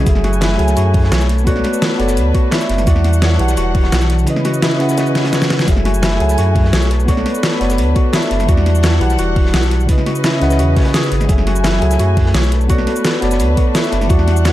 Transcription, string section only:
0, 0, Header, 1, 2, 480
1, 0, Start_track
1, 0, Tempo, 350877
1, 89, Time_signature, 4, 2, 24, 8
1, 19870, End_track
2, 0, Start_track
2, 0, Title_t, "String section"
2, 0, Program_c, 0, 48
2, 89, Note_on_c, 0, 54, 74
2, 89, Note_on_c, 0, 57, 73
2, 89, Note_on_c, 0, 64, 72
2, 89, Note_on_c, 0, 80, 86
2, 1752, Note_off_c, 0, 54, 0
2, 1752, Note_off_c, 0, 64, 0
2, 1752, Note_off_c, 0, 80, 0
2, 1770, Note_on_c, 0, 62, 76
2, 1770, Note_on_c, 0, 71, 94
2, 3891, Note_off_c, 0, 57, 0
2, 3908, Note_off_c, 0, 62, 0
2, 3908, Note_off_c, 0, 71, 0
2, 3928, Note_on_c, 0, 52, 77
2, 3928, Note_on_c, 0, 55, 71
2, 3928, Note_on_c, 0, 78, 84
2, 3929, Note_on_c, 0, 62, 69
2, 5829, Note_off_c, 0, 55, 0
2, 5829, Note_off_c, 0, 78, 0
2, 5830, Note_off_c, 0, 62, 0
2, 5846, Note_on_c, 0, 61, 73
2, 5847, Note_on_c, 0, 71, 88
2, 5847, Note_on_c, 0, 75, 70
2, 7730, Note_off_c, 0, 52, 0
2, 7748, Note_off_c, 0, 61, 0
2, 7748, Note_off_c, 0, 75, 0
2, 7749, Note_off_c, 0, 71, 0
2, 7769, Note_on_c, 0, 54, 78
2, 7769, Note_on_c, 0, 64, 70
2, 7769, Note_on_c, 0, 80, 85
2, 7770, Note_on_c, 0, 57, 76
2, 9432, Note_off_c, 0, 54, 0
2, 9432, Note_off_c, 0, 64, 0
2, 9432, Note_off_c, 0, 80, 0
2, 9447, Note_on_c, 0, 71, 95
2, 9448, Note_on_c, 0, 62, 81
2, 11571, Note_off_c, 0, 57, 0
2, 11587, Note_off_c, 0, 71, 0
2, 11610, Note_on_c, 0, 52, 75
2, 11611, Note_on_c, 0, 55, 72
2, 11611, Note_on_c, 0, 78, 87
2, 13488, Note_off_c, 0, 62, 0
2, 13510, Note_off_c, 0, 52, 0
2, 13511, Note_off_c, 0, 55, 0
2, 13511, Note_off_c, 0, 78, 0
2, 13526, Note_on_c, 0, 61, 72
2, 13526, Note_on_c, 0, 71, 91
2, 13527, Note_on_c, 0, 52, 76
2, 13527, Note_on_c, 0, 75, 72
2, 15428, Note_off_c, 0, 61, 0
2, 15428, Note_off_c, 0, 71, 0
2, 15429, Note_off_c, 0, 52, 0
2, 15429, Note_off_c, 0, 75, 0
2, 15446, Note_on_c, 0, 54, 77
2, 15446, Note_on_c, 0, 80, 84
2, 15447, Note_on_c, 0, 64, 70
2, 15448, Note_on_c, 0, 57, 74
2, 17111, Note_off_c, 0, 54, 0
2, 17111, Note_off_c, 0, 64, 0
2, 17111, Note_off_c, 0, 80, 0
2, 17130, Note_on_c, 0, 62, 80
2, 17130, Note_on_c, 0, 71, 90
2, 19250, Note_off_c, 0, 57, 0
2, 19268, Note_off_c, 0, 71, 0
2, 19284, Note_on_c, 0, 78, 88
2, 19285, Note_on_c, 0, 52, 80
2, 19285, Note_on_c, 0, 55, 73
2, 19870, Note_off_c, 0, 52, 0
2, 19870, Note_off_c, 0, 55, 0
2, 19870, Note_off_c, 0, 62, 0
2, 19870, Note_off_c, 0, 78, 0
2, 19870, End_track
0, 0, End_of_file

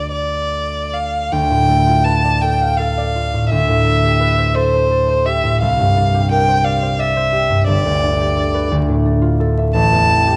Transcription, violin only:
0, 0, Header, 1, 2, 480
1, 0, Start_track
1, 0, Tempo, 790514
1, 801, Time_signature, 6, 3, 24, 8
1, 801, Tempo, 731707
1, 1761, Tempo, 707547
1, 3681, Tempo, 692841
1, 6974, End_track
2, 0, Start_track
2, 0, Title_t, "Violin"
2, 0, Program_c, 0, 40
2, 0, Note_on_c, 0, 74, 45
2, 69, Note_off_c, 0, 74, 0
2, 73, Note_on_c, 0, 74, 42
2, 565, Note_on_c, 0, 77, 43
2, 574, Note_off_c, 0, 74, 0
2, 801, Note_on_c, 0, 79, 55
2, 811, Note_off_c, 0, 77, 0
2, 1276, Note_on_c, 0, 81, 50
2, 1286, Note_off_c, 0, 79, 0
2, 1518, Note_on_c, 0, 79, 49
2, 1528, Note_off_c, 0, 81, 0
2, 1749, Note_on_c, 0, 77, 48
2, 1759, Note_off_c, 0, 79, 0
2, 2239, Note_off_c, 0, 77, 0
2, 2247, Note_on_c, 0, 76, 57
2, 2959, Note_on_c, 0, 72, 53
2, 2969, Note_off_c, 0, 76, 0
2, 3440, Note_on_c, 0, 76, 49
2, 3450, Note_off_c, 0, 72, 0
2, 3676, Note_off_c, 0, 76, 0
2, 3680, Note_on_c, 0, 77, 56
2, 4151, Note_off_c, 0, 77, 0
2, 4165, Note_on_c, 0, 79, 59
2, 4399, Note_on_c, 0, 77, 53
2, 4410, Note_off_c, 0, 79, 0
2, 4645, Note_on_c, 0, 76, 51
2, 4655, Note_off_c, 0, 77, 0
2, 5111, Note_off_c, 0, 76, 0
2, 5115, Note_on_c, 0, 74, 57
2, 5820, Note_off_c, 0, 74, 0
2, 6554, Note_on_c, 0, 81, 72
2, 6974, Note_off_c, 0, 81, 0
2, 6974, End_track
0, 0, End_of_file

